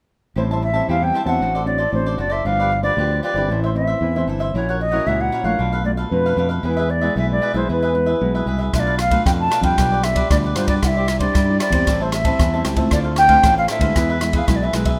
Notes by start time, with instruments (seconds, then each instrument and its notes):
0.36 fingered electric bass A1, nylon-string guitar A2 G3 C4 E4, cavaquinho G4 C5 E5 A5, flute C5
0.51 cavaquinho C5 E5 A5
0.62 flute E5, muted cavaquinho stroke
0.73 nylon-string guitar G3 C4 E4, cavaquinho C5 E5 A5
0.88 fingered electric bass E2, nylon-string guitar E3, cavaquinho G4 C5 E5 A5, flute F5
1.01 nylon-string guitar G3 C4 E4, flute G5
1.14 cavaquinho G4 C5 E5 A5
1.25 fingered electric bass E2, nylon-string guitar F#3 C4 D4, cavaquinho E5 A5, flute F#5
1.29 cavaquinho C5
1.40 fingered electric bass A1, nylon-string guitar A2, cavaquinho F#4 A4 C5 D5
1.55 cavaquinho A4 C5 D5
1.65 nylon-string guitar F#3 C4 D4, flute D5, muted cavaquinho stroke
1.78 cavaquinho A4 C5 D5
1.92 fingered electric bass A1, nylon-string guitar A2 F#3 C4 D4, flute C5
2.06 cavaquinho A4 C5 D5
2.18 fingered electric bass F#1, cavaquinho F#4 A4 C5 D5, flute D5
2.30 cavaquinho A4 C5 D5, flute E5
2.45 fingered electric bass G1, nylon-string guitar G2 F3 B3 D4, cavaquinho F4 G4 B4 D5, flute F5
2.59 cavaquinho G4 B4 D5
2.71 muted cavaquinho stroke
2.82 nylon-string guitar F3 B3 D4, cavaquinho G4 B4 D5, flute D5
2.97 fingered electric bass D2, nylon-string guitar D3 F3 B3 D4, cavaquinho F4 G4 B4 D5
3.23 cavaquinho F4 G4 B4 D5, flute D5
3.34 fingered electric bass G1, nylon-string guitar E3 C4 E4, cavaquinho G4 B4 D5
3.48 fingered electric bass A1, nylon-string guitar A2, cavaquinho A4 C5 E5
3.64 flute C5, cavaquinho C5 E5
3.74 nylon-string guitar E3 C4 E4, flute E5, muted cavaquinho stroke
3.87 cavaquinho C5 E5
4.01 fingered electric bass E2, nylon-string guitar E3 C4 E4
4.16 nylon-string guitar E3 C4 E4, cavaquinho C5 E5
4.27 fingered electric bass G1, cavaquinho A4 C5 E5
4.40 cavaquinho C5 E5
4.54 fingered electric bass A#1, nylon-string guitar A#2 F#3 C#4 E4, cavaquinho E4 A#4 C#5 F#5, flute C#5
4.69 cavaquinho A#4 C#5 F#5
4.80 flute D#5, muted cavaquinho stroke
4.92 nylon-string guitar F#3 C#4 E4, cavaquinho A#4 C#5 F#5
5.07 fingered electric bass C#2, nylon-string guitar A#2, cavaquinho E4 A#4 C#5 F#5, flute E5
5.21 flute F#5
5.32 cavaquinho E4 A#4 C#5 F#5
5.44 fingered electric bass A#1, nylon-string guitar A3 D4 F4, cavaquinho A#4 C#5 F#5, flute F5
5.59 fingered electric bass B1, nylon-string guitar B2, cavaquinho D4 A4 B4 F5
5.73 cavaquinho A4 B4 F5
5.85 nylon-string guitar A3 D4 F4, flute D5, muted cavaquinho stroke
5.97 cavaquinho A4 B4 F5
6.11 fingered electric bass F2, nylon-string guitar B2 A3 D4 F4, flute B4
6.26 cavaquinho A4 B4 F5
6.37 fingered electric bass F2, cavaquinho D4 A4 B4 F5
6.49 cavaquinho A4 B4 F5
6.63 fingered electric bass E2, nylon-string guitar E3 G#3 B3 E4, cavaquinho E4 G#4 B4 E5, flute B4
6.77 cavaquinho G#4 B4 E5
6.89 flute D5, muted cavaquinho stroke
7.01 nylon-string guitar G#3 B3 E4, cavaquinho G#4 B4 E5
7.16 fingered electric bass B1, nylon-string guitar B2, cavaquinho E4 G#4 B4 E5, flute E5
7.30 nylon-string guitar G#3 B3 E4, flute D5
7.42 cavaquinho E4 G#4 B4 E5
7.54 fingered electric bass B1, nylon-string guitar G#3 B3 E4, cavaquinho G#4 B4 E5, flute C5
7.69 fingered electric bass E2, nylon-string guitar E3, cavaquinho E4 G#4 B4 E5, flute B4
7.82 cavaquinho G#4 B4 E5
7.94 nylon-string guitar G#3 B3 E4, muted cavaquinho stroke
8.06 cavaquinho G#4 B4 E5
8.21 fingered electric bass B1, nylon-string guitar B2 G#3 B3 E4
8.35 cavaquinho G#4 B4 E5
8.46 fingered electric bass C2, cavaquinho E4 G#4 B4 E5
8.58 cavaquinho G#4 B4 E5
8.73 fingered electric bass B1, nylon-string guitar B2 A3 D4 F4, cavaquinho D4 A4 B4 F5, flute E5, kick, cross-stick, ride
8.80 flute D5
8.87 cavaquinho A4 B4 F5
8.99 flute F5, muted cavaquinho stroke, cross-stick, ride
9.10 nylon-string guitar A3 D4 F4, cavaquinho A4 B4 F5, kick, ride
9.26 fingered electric bass F2, nylon-string guitar B2, cavaquinho D4 A4 B4 F5, flute G5, kick, cross-stick, ride
9.40 flute A5
9.50 cavaquinho D4 A4 B4 F5, cross-stick, ride
9.61 fingered electric bass F2, nylon-string guitar G3 D4 F4, cavaquinho A4 B4 F5, flute G5, kick, ride
9.78 fingered electric bass B1, nylon-string guitar B2, cavaquinho F4 G4 B4 D5, kick, cross-stick, ride
9.92 cavaquinho G4 B4 D5
10.03 nylon-string guitar G3 D4 F4, flute E5, muted cavaquinho stroke, cross-stick, ride
10.15 cavaquinho G4 B4 D5, kick, ride
10.30 fingered electric bass D2, nylon-string guitar B2 G3 D4 F4, flute D5, kick, cross-stick, ride
10.44 cavaquinho G4 B4 D5
10.55 fingered electric bass G2, nylon-string guitar G3 D4 F4, cavaquinho F4 G4 B4 D5, flute C5, cross-stick, ride
10.67 cavaquinho G4 B4 D5, flute D5, kick, ride
10.83 fingered electric bass C2, nylon-string guitar C3 G3 D4 E4, cavaquinho E4 G4 C5 D5, flute F#5, kick, cross-stick, ride
10.87 flute E5
10.96 cavaquinho G4 C5 D5
11.08 cross-stick, ride
11.19 nylon-string guitar G3 D4 E4, cavaquinho G4 C5 D5, flute D5, kick, ride
11.34 fingered electric bass G2, nylon-string guitar G3, cavaquinho E4 G4 C5 D5, kick, cross-stick, ride
11.49 nylon-string guitar G3 D4 E4
11.60 cavaquinho E4 G4 C5 D5, flute D5, cross-stick, ride
11.70 fingered electric bass E2, nylon-string guitar G3 C4 E4, cavaquinho G4 C5 D5, kick, ride
11.87 fingered electric bass A1, nylon-string guitar A2, cavaquinho G4 C5 E5 A5, kick, cross-stick, ride
12.00 flute C5, cavaquinho C5 E5 A5
12.12 flute E5, muted cavaquinho stroke, cross-stick, ride
12.24 nylon-string guitar G3 C4 E4, cavaquinho C5 E5 A5, kick, ride
12.39 fingered electric bass E2, nylon-string guitar E3, kick, cross-stick, ride
12.53 nylon-string guitar G3 C4 E4, cavaquinho C5 E5 A5
12.65 fingered electric bass C#2, cavaquinho G4 C5 E5 A5, cross-stick, ride
12.76 nylon-string guitar A3 C4 F4, cavaquinho C5 E5 A5, kick, ride
12.91 fingered electric bass D2, nylon-string guitar D3, cavaquinho D4 A4 C5 F5, flute D5, kick, cross-stick, ride
13.04 cavaquinho A4 C5 F5
13.16 flute G5, muted cavaquinho stroke, cross-stick, ride
13.29 nylon-string guitar A3 C4 F4, cavaquinho A4 C5 F5, kick, ride
13.43 fingered electric bass A1, nylon-string guitar A2, cavaquinho D4 A4 C5 F5, kick, cross-stick, ride
13.58 flute F5
13.68 cavaquinho D4 A4 C5 F5, flute E5, cross-stick, ride
13.79 fingered electric bass D2, nylon-string guitar G#3 B3 E4, cavaquinho C5 F5, kick, ride
13.84 cavaquinho A4
13.95 fingered electric bass E2, nylon-string guitar E3, cavaquinho E4 G#4 B4 E5, kick, cross-stick, ride
14.09 cavaquinho G#4 B4 E5
14.21 nylon-string guitar G#3 B3 E4, muted cavaquinho stroke, cross-stick, ride
14.33 cavaquinho G#4 B4 E5, kick, ride
14.38 flute F5
14.46 fingered electric bass B1, nylon-string guitar B2 G#3 B3 E4, flute E5, kick, cross-stick, ride
14.56 flute D5
14.62 cavaquinho G#4 B4 E5, flute E5
14.73 fingered electric bass B1, nylon-string guitar G#3 B3 E4, cavaquinho E4 G#4 B4 E5, cross-stick, ride
14.85 cavaquinho G#4 B4 E5, kick, ride